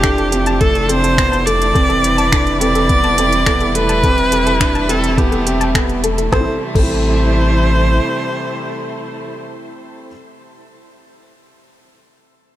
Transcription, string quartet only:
Already playing: C3 E3 F3 A3 D4
1.75 G3 E4 B4
4.03 A3
6.32 C3 E3 G3 A3 E4

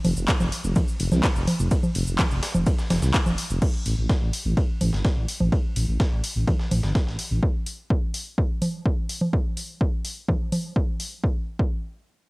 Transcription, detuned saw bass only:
0.04 F1
0.16 F1
0.40 F1
0.64 F1
1.00 F1
1.12 C2
1.36 F1
1.59 F1
1.95 F1
2.07 F1
2.31 F1
2.55 F1
2.90 F1
3.02 C2
3.26 F1
3.50 F1
3.86 A1
3.98 A1
4.22 A1
4.45 A1
4.81 A1
4.93 G1
5.17 A1
5.40 A1
5.76 A1
5.88 A1
6.12 A1
6.36 A1
6.71 A1
6.83 G1
7.07 A1
7.31 A1

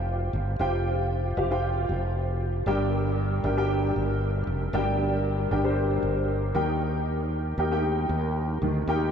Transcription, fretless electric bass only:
Already playing: F1
0.33 G1
0.59 F1
1.37 F1
1.89 F1
2.66 G1
3.44 G1
3.96 G1
4.47 F1
4.73 G1
5.51 G1
6.03 G1
6.55 D#2
7.58 D#2
8.09 D#2
8.62 D2
8.87 D#2

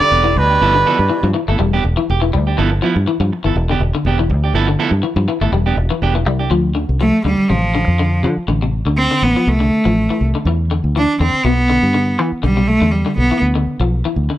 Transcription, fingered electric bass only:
0.11 E1
0.36 D2
0.61 G1
0.99 G2
1.23 G2
1.48 G1
1.59 E1
1.84 E1
2.10 E1
2.33 D2
2.59 G1
2.96 G2
3.20 G2
3.45 G1
3.56 E1
3.80 E1
4.05 E1
4.30 D2
4.54 G1
4.91 G2
5.16 G2
5.41 G1
5.52 E1
5.77 E1
6.02 E1
6.26 C2
6.50 D2
6.89 C2
7.25 D2
7.39 muted fingered electric bass stroke
7.50 A1
7.88 F2
8.23 D3
8.37 muted fingered electric bass stroke
8.48 A1
8.86 D2
9.22 A1
9.47 C2
9.86 A1
10.21 C2
10.45 E2
10.84 D2
11.20 E2
11.34 muted fingered electric bass stroke
11.44 B1
11.83 G2
12.19 E3
12.32 muted fingered electric bass stroke
12.44 B1
12.81 E2
13.18 B1
13.31 muted fingered electric bass stroke
13.42 D2
13.67 muted fingered electric bass stroke
13.80 B1
14.06 muted fingered electric bass stroke
14.16 D2

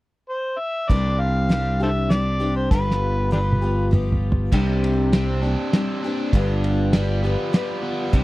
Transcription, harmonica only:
0.30 C5
0.58 E5
0.89 D5
1.20 F5
1.83 A4 C5 E5
2.12 D5
2.56 C5
2.71 B4
3.33 D4 G4 B4

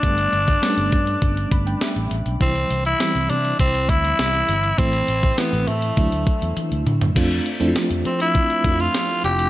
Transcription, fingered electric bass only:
0.03 G1
0.33 G1
0.77 G1
0.92 G2
1.22 G1
1.51 G1
1.96 A1
2.11 A1
2.26 B1
2.41 C2
2.70 C2
3.15 C2
3.30 C3
3.60 C2
3.89 D2
4.19 C2
4.49 G1
4.78 A1
5.08 A1
5.53 A1
5.68 A2
5.97 D2
6.12 D2
6.42 E2
6.57 muted fingered electric bass stroke
6.72 D2
6.87 D3
7.16 F2
7.61 F2
7.90 F2
8.05 F3
8.64 F2
9.24 F1

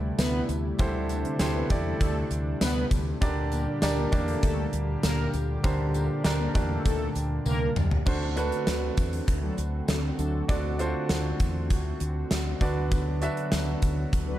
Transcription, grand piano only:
Already playing: D3 E4 G4 A4 B4 C5 D5
0.79 D3 E4 G4 A4 C5
1.39 E4 G4 A4 C5
1.70 E4 G4 A4 D5
3.21 D3 D4 G4 A#4 D5
3.82 D4 G4 A#4 D5
4.12 A#3 D4 G4 D5
5.64 D3 D4 G4 A#4 C5
6.24 D4 G4 A#4 D5
6.54 A#3 D4 G4 D5
8.06 D3 D4 F#4 A4 C5
8.36 D4 F#4 A4 B4
10.48 D3 D4 F#4 A4 D5
10.79 D4 F4 A4 C5
10.86 F#4
12.61 D3 D4 F#4 B4 D5
13.22 D4 F#4 B4 E5

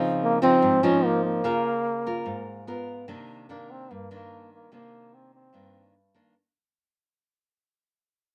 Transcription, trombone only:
0.23 A#3
0.43 C4
0.84 C#4
1.05 A#3
1.25 A#3
3.50 A#3
3.71 C4
3.92 A#3
4.13 A#3
4.53 A#3
4.74 A#3
5.14 C4
5.34 C4

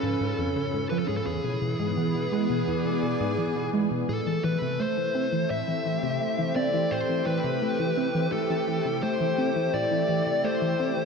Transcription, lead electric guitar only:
Already playing: A4
0.90 B4
0.99 A4
1.08 G#4
1.17 A4
1.26 G#4
4.09 A4
4.44 B4
4.80 C5
5.50 E5
6.56 D5
6.91 C5
7.26 B4
8.32 A4
9.03 C5
9.74 D5
10.44 C5

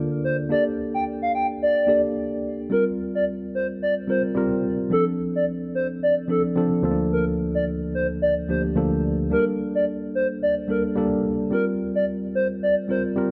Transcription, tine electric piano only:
Already playing: D3 A#3 D4 F4 A4 D5
0.49 A#3 D4 G4 A4 D5
1.87 A#3 D4 G4 A4 D5
2.70 G3 C4 F4 A#4
4.07 G3 C4 F4 A#4
4.35 G3 C4 F4 A#4
4.90 F3 C4 D4 A4
6.28 F3 C4 D4 A4
6.55 F3 C4 D4 A4
6.83 D2 F3 A#3 C4 A4
6.91 D4
8.48 D2 F3 A#3 D4 G4
8.75 D2 F3 A#3 D4 A4
9.30 G3 A#3 D4 G4
9.39 A4
10.68 G3 A#3 D4 A4
10.95 G3 A#3 D4 A4
11.51 G3 C4 F4 A#4
12.88 G3 C4 F4 A#4
13.16 G3 C4 F4 A#4

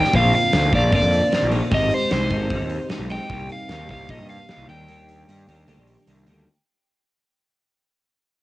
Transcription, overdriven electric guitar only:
Already playing: G5
0.16 F5
0.35 F5
0.75 D5
0.95 D5
1.74 D#5
1.94 C5
2.12 C5
3.12 G5
3.52 F5
3.91 F5
4.10 D#5
4.30 F5
4.70 G5

